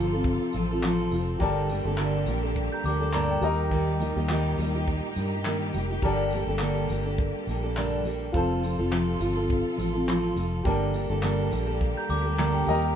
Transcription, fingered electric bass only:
Already playing: G1
0.54 A1
1.11 F1
1.40 G1
1.85 G1
2.26 A#1
2.84 D2
3.41 D#2
4.16 D#2
4.58 D#2
5.16 G2
5.74 F1
6.02 G1
6.47 G1
6.90 G1
7.47 A#1
8.34 F1
8.79 F1
9.20 G1
9.78 A1
10.36 F1
10.65 G1
11.10 G1
11.52 A#1
12.09 D2
12.67 D#2

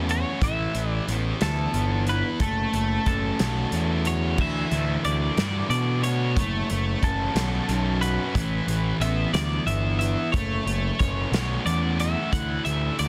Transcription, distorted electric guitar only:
Already playing: A3 C#4
0.09 F#4
0.42 E3
0.74 E3
1.09 B3
1.42 E4
1.74 B3
2.09 E4
2.41 A3
2.75 A3
3.08 C#4
3.40 F#4
3.72 C#4
4.06 F#4
4.39 E3
4.73 A3
5.05 D4
5.38 F#4
5.70 D4
6.04 F#4
6.37 A3
6.70 A3
7.03 C#4
7.35 F#4
7.69 C#4
8.02 F#4
8.34 E3
8.68 E3
9.01 B3
9.34 E4
9.67 B3
10.00 E4
10.33 A3
10.67 A3
11.00 C#4
11.33 F#4
11.66 C#4
12.00 F#4
12.33 E3
12.66 A3
12.99 D4

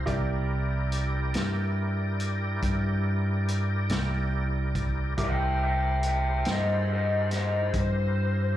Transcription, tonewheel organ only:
0.06 E4 G4 A#4 D5
5.21 E4 G4 A#4 C5

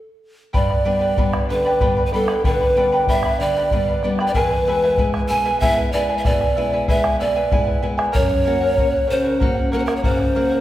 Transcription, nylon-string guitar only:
0.54 G2
0.85 G3 B3 D4
1.18 G3 B3 D4
1.50 D3
1.81 G3 B3 D4
2.14 G3 B3 D4
2.45 D3
2.77 G3 B3 D4
3.08 G3 B3 D4
3.40 D3
3.72 G3 B3 D4
4.04 G3 B3 D4
4.35 E2
4.67 G#3 B3 E4
4.98 G#3 B3 E4
5.30 B2
5.62 G#3 B3 E4
5.93 G#3 B3 E4
6.26 B2
6.57 G#3 B3 E4
6.90 G#3 B3 E4
7.21 B2
7.52 G#3 B3 E4
7.83 G#3 B3 E4
8.15 F#2
8.47 A#3 C#4 F#4
8.78 A#3 C#4 F#4
9.10 C#3
9.42 A#3 C#4 F#4
9.73 A#3 C#4 F#4
10.05 C#3
10.36 A#3 C#4 F#4

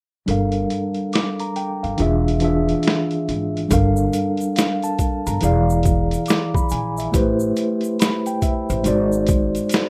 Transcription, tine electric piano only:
0.26 G3 D4 A4 A#4
0.31 F5
1.14 D6
1.41 A#5
1.57 G5
1.83 F5
1.97 E3 D4 F4 G#4
2.02 E5
2.40 E3 D4 F4 G#4
2.44 E5
3.68 G3 D4 A4 A#4
3.73 F5
4.57 F5
4.84 A5
5.27 A#5
5.41 E3 E4 G#4 D5
5.45 F5
6.28 D6
6.55 B5
6.71 G#5
6.98 E5
7.12 A3 E4 G4 B4
7.16 C5
8.00 B5
8.27 G5
8.43 E5
8.70 C5
8.84 G#3 D#4 F#4 C5
8.88 D5

